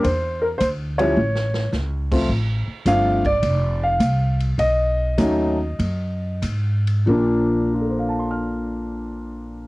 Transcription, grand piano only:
0.03 0.44 C5 medium
0.42 0.47 A#4 medium
0.58 0.67 C5 medium
0.98 1.15 F3 medium
0.98 1.15 G3 medium
0.98 1.15 C#4 medium
0.98 1.16 E4 medium
0.98 1.68 C#5 medium
2.12 2.28 F3 medium
2.12 2.27 A3 medium
2.12 2.28 C4 medium
2.12 2.28 F4 medium
2.86 3.21 F3 medium
2.86 3.21 A3 medium
2.86 3.21 C4 medium
2.86 3.21 D4 medium
2.86 3.23 F5 loud
3.26 3.84 D5 loud
3.83 4.37 F5 medium
4.59 6.39 D#5 loud
5.18 5.56 F#3 medium
5.18 5.56 A3 medium
5.18 5.56 C#4 medium
5.18 5.56 D#4 medium
7.06 9.67 A#2 medium
7.06 9.67 F3 medium
7.06 9.67 A#3 medium
7.06 9.67 D4 medium
7.06 9.67 A#4 medium
7.73 9.67 F4 soft
7.81 9.67 A4 soft
7.89 9.67 C5 soft
7.99 9.67 F5 soft
8.09 9.67 A5 soft
8.19 9.67 C6 soft
8.31 9.67 F6 soft

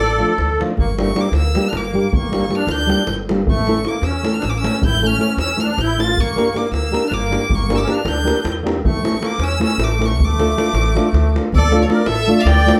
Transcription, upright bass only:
0.00 0.21 A1 medium
0.38 0.62 D2 medium
0.77 1.10 G1 medium
1.32 1.56 D2 medium
1.73 1.97 G1 medium
2.13 2.46 G1 medium
2.67 2.91 D2 loud
3.07 3.47 G1 medium
3.47 3.80 A1 medium
4.02 4.26 E2 medium
4.43 4.67 A1 medium
4.82 5.14 A1 medium
5.37 5.61 E2 medium
5.78 6.18 A1 medium
6.17 6.49 G1 medium
6.72 6.95 D2 medium
7.11 7.35 G1 medium
7.51 7.84 G1 medium
8.05 8.29 D2 medium
8.45 8.85 E2 medium
8.85 9.18 A1 loud
9.38 9.63 E2 medium
9.78 10.18 A1 medium
10.18 10.51 D2 medium
10.73 10.97 A1 medium
11.13 11.37 D2 medium
11.52 11.85 D2 medium
12.07 12.31 A1 medium
12.45 12.70 D2 loud

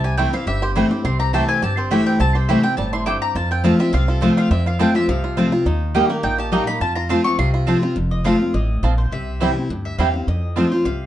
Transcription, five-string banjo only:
0.00 0.33 C4 medium
0.00 0.18 E4 medium
0.04 0.47 G4 medium
0.18 0.75 E4 medium
0.33 1.04 C4 medium
0.47 0.62 G4 medium
0.62 0.90 G4 medium
0.76 2.16 E4 medium
0.91 1.19 G4 medium
1.05 1.48 C4 medium
1.19 1.32 G4 medium
1.34 1.61 G4 medium
1.49 1.77 C4 medium
1.62 1.90 G4 medium
1.77 2.06 C4 medium
1.91 2.32 G4 medium
2.06 2.19 C4 medium
2.20 2.64 C4 medium
2.35 2.48 G4 medium
2.49 2.90 G4 medium
2.64 3.06 C4 medium
2.78 3.19 G3 medium
2.93 3.33 E4 medium
3.07 3.51 C4 medium
3.22 3.36 G4 medium
3.36 3.63 F4 medium
3.51 3.79 C4 medium
3.65 3.92 F4 medium
3.80 4.20 C4 medium
3.94 4.07 F4 medium
4.08 4.36 F4 medium
4.22 4.50 C4 medium
4.37 4.65 F4 medium
4.51 4.92 C4 medium
4.66 4.79 F4 medium
4.80 5.21 F4 medium
4.95 5.35 C4 medium
5.09 5.49 F3 medium
5.24 5.51 F4 medium
5.37 5.66 C4 medium
5.52 5.66 F4 medium
5.66 6.07 D#4 medium
5.95 6.36 G4 medium
6.10 6.50 A#3 medium
6.23 6.64 D#4 medium
6.38 6.78 G4 medium
6.52 6.81 A#3 medium
6.67 6.81 D#4 medium
6.81 6.95 F4 medium
6.96 7.09 F4 medium
7.10 7.38 F4 medium
7.25 7.65 C4 medium
7.39 7.53 F4 medium
7.54 7.67 F4 medium
7.68 7.82 F4 medium
7.83 7.97 F4 medium
8.26 8.32 C4 medium
8.26 8.28 F4 medium
8.84 8.90 C4 medium
8.84 8.86 F4 medium
9.42 9.48 C4 medium
9.42 9.48 E4 medium
9.42 9.48 G4 medium
9.99 10.06 C4 medium
9.99 10.06 E4 medium
9.99 10.06 G4 medium
10.57 10.64 C4 medium
10.57 10.60 F4 medium

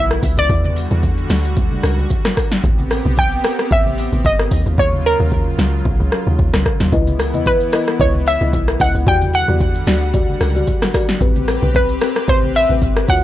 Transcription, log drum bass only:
0.00 0.20 B1 medium
0.23 0.36 C#2 medium
0.38 0.48 C#2 medium
0.50 0.87 E2 loud
0.91 1.26 E2 loud
1.30 1.79 D2 medium
1.83 2.08 C#2 medium
2.64 3.01 A1 loud
3.05 3.40 B1 medium
3.71 4.09 A1 loud
4.12 4.23 A1 medium
4.25 4.49 G1 loud
4.51 4.65 D#2 loud
4.66 4.77 D#2 medium
4.78 5.16 D#2 loud
5.20 5.55 D#2 medium
5.58 5.83 C#2 loud
5.85 5.99 B1 loud
6.00 6.11 C#2 medium
6.27 6.38 D#2 medium
6.39 6.52 D#2 medium
6.54 6.64 C#2 loud
6.80 6.91 D#2 medium
6.92 7.35 C#2 loud
7.34 7.69 E2 medium
8.00 8.37 C#2 loud
8.41 8.52 C#2 medium
8.53 8.77 B1 medium
8.80 8.93 C#2 medium
8.95 9.06 C#2 medium
9.07 9.44 E2 loud
9.48 9.83 E2 loud
9.87 10.37 D2 medium
10.41 10.65 C#2 medium
11.21 11.59 A1 loud
11.62 11.97 B1 medium
12.28 12.66 A1 loud
12.70 12.80 A1 medium
12.82 13.06 G1 medium
13.09 13.22 D#2 medium

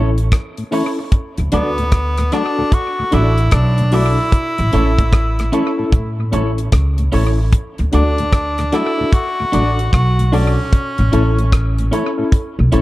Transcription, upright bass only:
0.00 0.30 A1 medium
1.38 1.52 D2 medium
1.52 2.28 D2 medium
3.13 3.50 A1 medium
3.53 4.15 B1 medium
4.59 4.72 A1 medium
4.73 5.49 A1 medium
5.93 6.30 A2 medium
6.33 6.71 A1 medium
6.73 7.10 C#2 medium
7.13 7.51 A1 medium
7.79 7.92 D2 medium
7.94 8.69 D2 medium
9.54 9.91 A1 medium
9.93 10.55 B1 medium
10.99 11.12 A1 medium
11.13 11.89 A1 medium
12.59 12.72 B1 medium
12.73 12.82 A1 medium

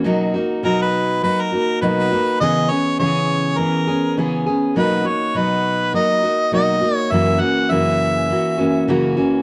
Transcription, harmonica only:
0.65 0.81 A#4 medium
0.82 1.20 B4 medium
1.23 1.43 B4 medium
1.41 1.81 A#4 medium
1.82 2.37 B4 medium
2.40 2.72 D#5 loud
2.70 2.99 C#5 loud
2.99 3.59 C#5 loud
3.58 4.17 A#4 medium
4.78 5.08 B4 medium
5.07 5.38 C#5 medium
5.37 5.94 B4 medium
5.95 6.49 D#5 loud
6.54 6.96 D#5 loud
6.96 7.13 C#5 loud
7.12 7.43 E5 loud
7.41 7.73 F#5 loud
7.71 8.89 E5 loud

